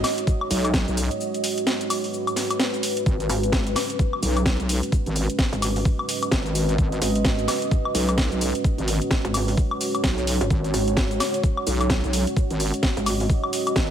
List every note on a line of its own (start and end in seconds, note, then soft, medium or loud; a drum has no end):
0.00 13.90 G#3 medium
0.00 3.02 D#4 medium
0.00 13.90 F#4 medium
0.00 3.05 C#5 medium
0.00 1.14 D#5 medium
0.00 snare medium
0.04 open hi-hat loud
0.04 high woodblock medium
0.04 shaker medium
0.18 closed hi-hat medium
0.18 shaker soft
0.27 kick loud
0.27 shaker soft
0.41 high woodblock medium
0.51 0.85 B1 loud
0.51 open hi-hat loud
0.51 shaker medium
0.65 closed hi-hat medium
0.65 high woodblock medium
0.65 shaker soft
0.74 kick loud
0.74 snare loud
0.74 shaker soft
0.88 1.09 B1 loud
0.88 closed hi-hat soft
0.88 shaker soft
0.97 open hi-hat loud
0.97 shaker medium
1.11 4.86 B4 medium
1.11 closed hi-hat medium
1.11 shaker soft
1.21 shaker soft
1.34 closed hi-hat medium
1.34 shaker soft
1.44 open hi-hat loud
1.44 shaker medium
1.58 closed hi-hat medium
1.58 shaker soft
1.67 snare loud
1.67 shaker soft
1.81 closed hi-hat medium
1.81 shaker soft
1.90 open hi-hat loud
1.90 high woodblock medium
1.90 shaker medium
2.04 open hi-hat medium
2.04 shaker soft
2.14 shaker soft
2.27 closed hi-hat soft
2.27 high woodblock medium
2.27 shaker soft
2.36 snare medium
2.36 open hi-hat loud
2.36 shaker medium
2.50 closed hi-hat medium
2.50 high woodblock medium
2.50 shaker soft
2.60 snare loud
2.60 shaker soft
2.74 closed hi-hat soft
2.74 shaker soft
2.83 open hi-hat loud
2.83 shaker medium
2.97 closed hi-hat medium
2.97 shaker soft
3.06 3.28 G#1 loud
3.06 13.90 C#4 medium
3.06 10.49 B4 medium
3.06 kick loud
3.06 shaker soft
3.20 closed hi-hat medium
3.20 shaker soft
3.29 3.75 G#1 loud
3.29 open hi-hat loud
3.29 shaker medium
3.43 closed hi-hat medium
3.43 shaker soft
3.52 kick loud
3.52 snare loud
3.52 shaker soft
3.67 closed hi-hat medium
3.67 shaker soft
3.76 snare medium
3.76 open hi-hat loud
3.76 high woodblock medium
3.76 shaker medium
3.90 closed hi-hat medium
3.90 shaker soft
3.99 kick loud
3.99 shaker soft
4.13 high woodblock medium
4.22 4.57 B1 loud
4.22 open hi-hat loud
4.22 shaker medium
4.37 closed hi-hat medium
4.37 high woodblock medium
4.37 shaker soft
4.46 kick loud
4.46 snare loud
4.46 shaker soft
4.60 4.81 B1 loud
4.60 closed hi-hat soft
4.60 shaker soft
4.69 open hi-hat loud
4.69 shaker medium
4.83 8.58 D#5 medium
4.83 closed hi-hat medium
4.83 shaker soft
4.92 kick loud
4.92 shaker soft
5.06 5.27 G#1 loud
5.06 closed hi-hat medium
5.06 shaker soft
5.16 open hi-hat loud
5.16 shaker medium
5.30 closed hi-hat medium
5.30 shaker soft
5.39 kick loud
5.39 snare loud
5.39 shaker soft
5.53 5.84 G#1 loud
5.53 closed hi-hat medium
5.53 shaker soft
5.62 open hi-hat loud
5.62 high woodblock medium
5.62 shaker medium
5.76 open hi-hat medium
5.76 shaker soft
5.85 kick loud
5.85 shaker soft
5.99 high woodblock medium
6.09 open hi-hat loud
6.09 shaker medium
6.23 closed hi-hat medium
6.23 high woodblock medium
6.23 shaker soft
6.32 6.77 G#1 medium
6.32 kick loud
6.32 snare loud
6.32 shaker soft
6.46 closed hi-hat soft
6.46 shaker soft
6.55 open hi-hat loud
6.55 shaker medium
6.69 closed hi-hat medium
6.69 shaker soft
6.78 7.00 G#1 loud
6.78 kick loud
6.78 shaker soft
6.92 closed hi-hat soft
6.92 shaker soft
7.02 7.47 G#1 medium
7.02 open hi-hat loud
7.02 shaker medium
7.15 closed hi-hat medium
7.15 shaker soft
7.25 kick loud
7.25 snare loud
7.25 shaker soft
7.39 closed hi-hat medium
7.39 shaker soft
7.48 snare medium
7.48 open hi-hat loud
7.48 high woodblock medium
7.48 shaker medium
7.62 closed hi-hat medium
7.62 shaker soft
7.71 kick loud
7.71 shaker soft
7.85 high woodblock medium
7.95 8.30 B1 loud
7.95 open hi-hat loud
7.95 shaker medium
8.09 closed hi-hat medium
8.09 high woodblock medium
8.09 shaker soft
8.18 kick loud
8.18 snare loud
8.18 shaker soft
8.32 8.53 B1 loud
8.32 closed hi-hat soft
8.32 shaker soft
8.41 open hi-hat loud
8.41 shaker medium
8.55 12.30 C#5 medium
8.55 closed hi-hat medium
8.55 shaker soft
8.64 kick loud
8.64 shaker soft
8.78 8.99 G#1 medium
8.78 closed hi-hat soft
8.78 shaker soft
8.88 open hi-hat loud
8.88 shaker medium
9.02 closed hi-hat medium
9.02 shaker soft
9.11 kick loud
9.11 snare loud
9.11 shaker soft
9.25 9.56 G#1 loud
9.25 closed hi-hat soft
9.25 shaker soft
9.34 open hi-hat loud
9.34 high woodblock medium
9.34 shaker medium
9.48 open hi-hat medium
9.48 shaker soft
9.57 kick loud
9.57 shaker soft
9.71 high woodblock medium
9.81 open hi-hat loud
9.81 shaker medium
9.95 closed hi-hat medium
9.95 high woodblock medium
9.95 shaker soft
10.04 10.39 B1 medium
10.04 kick loud
10.04 snare loud
10.04 shaker soft
10.18 closed hi-hat soft
10.18 shaker soft
10.27 open hi-hat loud
10.27 shaker medium
10.41 10.49 G#1 loud
10.41 closed hi-hat medium
10.41 shaker soft
10.51 10.72 G#1 loud
10.51 13.90 C#5 medium
10.51 kick loud
10.51 shaker soft
10.64 closed hi-hat soft
10.64 shaker soft
10.74 11.19 G#1 loud
10.74 open hi-hat loud
10.74 shaker medium
10.88 closed hi-hat medium
10.88 shaker soft
10.97 kick loud
10.97 snare loud
10.97 shaker soft
11.11 closed hi-hat medium
11.11 shaker soft
11.20 snare medium
11.20 open hi-hat loud
11.20 high woodblock medium
11.20 shaker medium
11.34 closed hi-hat medium
11.34 shaker soft
11.44 kick loud
11.44 shaker soft
11.57 high woodblock medium
11.67 12.02 B1 loud
11.67 open hi-hat loud
11.67 shaker medium
11.81 closed hi-hat medium
11.81 high woodblock medium
11.81 shaker soft
11.90 kick loud
11.90 snare loud
11.90 shaker soft
12.04 12.25 B1 loud
12.04 closed hi-hat soft
12.04 shaker soft
12.13 open hi-hat loud
12.13 shaker medium
12.27 13.90 D#5 medium
12.27 closed hi-hat medium
12.27 shaker soft
12.37 kick loud
12.37 shaker soft
12.50 12.72 G#1 loud
12.50 closed hi-hat medium
12.50 shaker soft
12.60 open hi-hat loud
12.60 shaker medium
12.74 closed hi-hat medium
12.74 shaker soft
12.83 kick loud
12.83 snare loud
12.83 shaker soft
12.97 13.28 G#1 loud
12.97 closed hi-hat medium
12.97 shaker soft
13.06 open hi-hat loud
13.06 high woodblock medium
13.06 shaker medium
13.20 open hi-hat medium
13.20 shaker soft
13.30 kick loud
13.30 shaker soft
13.44 high woodblock medium
13.53 open hi-hat loud
13.53 shaker medium
13.67 closed hi-hat medium
13.67 high woodblock medium
13.67 shaker soft
13.76 13.90 G#1 loud
13.76 kick loud
13.76 snare loud
13.76 shaker soft